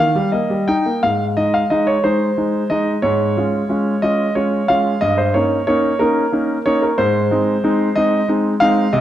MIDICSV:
0, 0, Header, 1, 2, 480
1, 0, Start_track
1, 0, Key_signature, -4, "major"
1, 0, Tempo, 684932
1, 723, Time_signature, 6, 3, 24, 8
1, 1666, Tempo, 656455
1, 6514, End_track
2, 0, Start_track
2, 0, Title_t, "Grand piano"
2, 0, Program_c, 0, 0
2, 0, Note_on_c, 0, 51, 52
2, 0, Note_on_c, 0, 77, 86
2, 103, Note_off_c, 0, 51, 0
2, 108, Note_on_c, 0, 55, 48
2, 204, Note_off_c, 0, 77, 0
2, 224, Note_on_c, 0, 75, 55
2, 229, Note_on_c, 0, 58, 39
2, 236, Note_off_c, 0, 55, 0
2, 351, Note_on_c, 0, 55, 45
2, 359, Note_off_c, 0, 58, 0
2, 450, Note_off_c, 0, 75, 0
2, 474, Note_on_c, 0, 79, 70
2, 481, Note_on_c, 0, 63, 53
2, 483, Note_off_c, 0, 55, 0
2, 602, Note_on_c, 0, 58, 40
2, 609, Note_off_c, 0, 63, 0
2, 696, Note_off_c, 0, 79, 0
2, 720, Note_on_c, 0, 77, 72
2, 723, Note_off_c, 0, 58, 0
2, 724, Note_on_c, 0, 44, 43
2, 864, Note_off_c, 0, 77, 0
2, 954, Note_off_c, 0, 44, 0
2, 958, Note_on_c, 0, 75, 67
2, 961, Note_on_c, 0, 56, 33
2, 963, Note_on_c, 0, 63, 38
2, 1078, Note_off_c, 0, 75, 0
2, 1078, Note_on_c, 0, 77, 63
2, 1131, Note_off_c, 0, 56, 0
2, 1132, Note_off_c, 0, 63, 0
2, 1193, Note_on_c, 0, 75, 68
2, 1196, Note_on_c, 0, 56, 38
2, 1197, Note_off_c, 0, 77, 0
2, 1201, Note_on_c, 0, 63, 47
2, 1310, Note_on_c, 0, 73, 68
2, 1313, Note_off_c, 0, 75, 0
2, 1366, Note_off_c, 0, 56, 0
2, 1369, Note_off_c, 0, 63, 0
2, 1427, Note_on_c, 0, 72, 64
2, 1430, Note_off_c, 0, 73, 0
2, 1430, Note_on_c, 0, 56, 38
2, 1435, Note_on_c, 0, 63, 42
2, 1599, Note_off_c, 0, 56, 0
2, 1601, Note_off_c, 0, 63, 0
2, 1666, Note_on_c, 0, 56, 38
2, 1667, Note_on_c, 0, 63, 39
2, 1839, Note_off_c, 0, 56, 0
2, 1840, Note_off_c, 0, 63, 0
2, 1874, Note_off_c, 0, 72, 0
2, 1901, Note_on_c, 0, 75, 69
2, 1904, Note_on_c, 0, 56, 41
2, 1910, Note_on_c, 0, 63, 45
2, 2047, Note_off_c, 0, 75, 0
2, 2078, Note_off_c, 0, 56, 0
2, 2082, Note_off_c, 0, 63, 0
2, 2138, Note_on_c, 0, 73, 70
2, 2144, Note_on_c, 0, 44, 54
2, 2379, Note_off_c, 0, 44, 0
2, 2390, Note_on_c, 0, 56, 38
2, 2393, Note_on_c, 0, 61, 34
2, 2395, Note_on_c, 0, 65, 41
2, 2564, Note_off_c, 0, 56, 0
2, 2565, Note_off_c, 0, 61, 0
2, 2567, Note_off_c, 0, 65, 0
2, 2626, Note_on_c, 0, 56, 41
2, 2630, Note_on_c, 0, 61, 40
2, 2632, Note_on_c, 0, 65, 42
2, 2802, Note_off_c, 0, 56, 0
2, 2804, Note_off_c, 0, 61, 0
2, 2806, Note_off_c, 0, 65, 0
2, 2868, Note_off_c, 0, 73, 0
2, 2869, Note_on_c, 0, 75, 74
2, 2870, Note_on_c, 0, 56, 37
2, 2875, Note_on_c, 0, 61, 40
2, 2879, Note_on_c, 0, 65, 38
2, 3045, Note_off_c, 0, 56, 0
2, 3047, Note_off_c, 0, 61, 0
2, 3050, Note_off_c, 0, 65, 0
2, 3087, Note_off_c, 0, 75, 0
2, 3111, Note_on_c, 0, 73, 61
2, 3113, Note_on_c, 0, 56, 33
2, 3114, Note_on_c, 0, 61, 38
2, 3119, Note_on_c, 0, 65, 38
2, 3286, Note_off_c, 0, 56, 0
2, 3287, Note_off_c, 0, 61, 0
2, 3290, Note_off_c, 0, 65, 0
2, 3353, Note_off_c, 0, 73, 0
2, 3353, Note_on_c, 0, 77, 73
2, 3355, Note_on_c, 0, 56, 40
2, 3359, Note_on_c, 0, 61, 41
2, 3360, Note_on_c, 0, 65, 45
2, 3528, Note_off_c, 0, 56, 0
2, 3531, Note_off_c, 0, 61, 0
2, 3532, Note_off_c, 0, 65, 0
2, 3590, Note_on_c, 0, 75, 77
2, 3595, Note_off_c, 0, 77, 0
2, 3596, Note_on_c, 0, 43, 53
2, 3713, Note_off_c, 0, 75, 0
2, 3713, Note_on_c, 0, 72, 62
2, 3829, Note_off_c, 0, 43, 0
2, 3833, Note_on_c, 0, 73, 65
2, 3835, Note_off_c, 0, 72, 0
2, 3835, Note_on_c, 0, 58, 40
2, 3840, Note_on_c, 0, 61, 36
2, 3843, Note_on_c, 0, 63, 41
2, 4008, Note_off_c, 0, 58, 0
2, 4011, Note_off_c, 0, 61, 0
2, 4013, Note_off_c, 0, 63, 0
2, 4050, Note_off_c, 0, 73, 0
2, 4074, Note_on_c, 0, 73, 75
2, 4078, Note_on_c, 0, 58, 47
2, 4080, Note_on_c, 0, 61, 44
2, 4083, Note_on_c, 0, 63, 52
2, 4249, Note_off_c, 0, 58, 0
2, 4251, Note_off_c, 0, 61, 0
2, 4252, Note_off_c, 0, 63, 0
2, 4309, Note_on_c, 0, 70, 67
2, 4314, Note_off_c, 0, 73, 0
2, 4315, Note_on_c, 0, 58, 42
2, 4318, Note_on_c, 0, 61, 44
2, 4322, Note_on_c, 0, 63, 45
2, 4487, Note_off_c, 0, 58, 0
2, 4489, Note_off_c, 0, 61, 0
2, 4492, Note_off_c, 0, 63, 0
2, 4552, Note_on_c, 0, 58, 43
2, 4556, Note_on_c, 0, 61, 39
2, 4557, Note_on_c, 0, 63, 44
2, 4725, Note_off_c, 0, 58, 0
2, 4727, Note_off_c, 0, 61, 0
2, 4728, Note_off_c, 0, 63, 0
2, 4762, Note_off_c, 0, 70, 0
2, 4795, Note_on_c, 0, 73, 75
2, 4798, Note_on_c, 0, 58, 44
2, 4802, Note_on_c, 0, 61, 40
2, 4803, Note_on_c, 0, 63, 51
2, 4913, Note_off_c, 0, 73, 0
2, 4916, Note_on_c, 0, 70, 55
2, 4968, Note_off_c, 0, 58, 0
2, 4971, Note_off_c, 0, 61, 0
2, 4972, Note_off_c, 0, 63, 0
2, 5031, Note_on_c, 0, 72, 75
2, 5033, Note_off_c, 0, 70, 0
2, 5034, Note_on_c, 0, 44, 56
2, 5265, Note_off_c, 0, 44, 0
2, 5274, Note_on_c, 0, 56, 47
2, 5275, Note_on_c, 0, 60, 42
2, 5280, Note_on_c, 0, 63, 45
2, 5445, Note_off_c, 0, 56, 0
2, 5446, Note_off_c, 0, 60, 0
2, 5449, Note_off_c, 0, 63, 0
2, 5511, Note_on_c, 0, 56, 50
2, 5514, Note_on_c, 0, 60, 49
2, 5517, Note_on_c, 0, 63, 57
2, 5682, Note_off_c, 0, 56, 0
2, 5684, Note_off_c, 0, 60, 0
2, 5686, Note_off_c, 0, 63, 0
2, 5745, Note_on_c, 0, 75, 78
2, 5748, Note_off_c, 0, 72, 0
2, 5748, Note_on_c, 0, 56, 42
2, 5753, Note_on_c, 0, 60, 40
2, 5757, Note_on_c, 0, 63, 46
2, 5920, Note_off_c, 0, 56, 0
2, 5923, Note_off_c, 0, 60, 0
2, 5926, Note_off_c, 0, 63, 0
2, 5985, Note_off_c, 0, 75, 0
2, 5985, Note_on_c, 0, 56, 45
2, 5987, Note_on_c, 0, 60, 39
2, 5992, Note_on_c, 0, 63, 47
2, 6157, Note_off_c, 0, 56, 0
2, 6159, Note_off_c, 0, 60, 0
2, 6161, Note_off_c, 0, 63, 0
2, 6217, Note_on_c, 0, 77, 90
2, 6220, Note_on_c, 0, 56, 48
2, 6224, Note_on_c, 0, 60, 48
2, 6228, Note_on_c, 0, 63, 51
2, 6393, Note_off_c, 0, 56, 0
2, 6396, Note_off_c, 0, 60, 0
2, 6399, Note_off_c, 0, 63, 0
2, 6456, Note_on_c, 0, 75, 73
2, 6457, Note_on_c, 0, 48, 64
2, 6459, Note_off_c, 0, 77, 0
2, 6514, Note_off_c, 0, 48, 0
2, 6514, Note_off_c, 0, 75, 0
2, 6514, End_track
0, 0, End_of_file